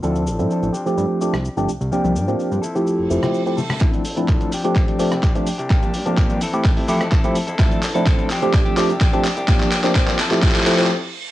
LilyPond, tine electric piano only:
\new Staff \with { instrumentName = "Tine electric piano" } { \time 4/4 \key g \dorian \tempo 4 = 127 <f c' d' e' a'>8 r16 <f c' d' e' a'>8. r16 <f a c' d' g'>8. <f a c' d' g'>16 r8 <f a c' d' g'>16 r8 | <f bes c' d' g'>8 r16 <f bes c' d' g'>8. r16 <f a c' e' g'>8. <f a c' e' g'>16 <f a c' e' g'>8 <f a c' e' g'>16 r8 | <f a c' d' e'>8 r16 <f a c' d' e'>8. r16 <f a c' d' g'>8. <f a c' d' g'>16 r8 <f a c' d' g'>16 r8 | <f bes c' d' g'>8 r16 <f bes c' d' g'>8. r16 <a c' e' g'>8. <f a c' e' g'>16 r8 <f a c' e' g'>16 r8 |
<f a c' d' e'>8 r16 <f a c' d' e'>8. r16 <f a c' d' g'>8. <f a c' d' g'>16 r8 <f a c' d' g'>16 r8 | <f bes c' d' g'>8 r16 <f bes c' d' g'>8. r16 <f a c' e' g'>8. <f a c' e' g'>16 <f a c' e' g'>16 r4 | }